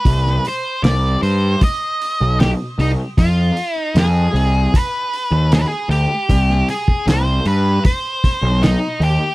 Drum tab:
HH |o-o-o-o-o-o-o-o-|o-o-o-o-o-o-o-o-|o-o-o-o-o-o-o-o-|
SD |-o--o-------o---|----o-------o---|-o--o-------o---|
BD |o-------o-------|o-------o-------|o--o----o-o-----|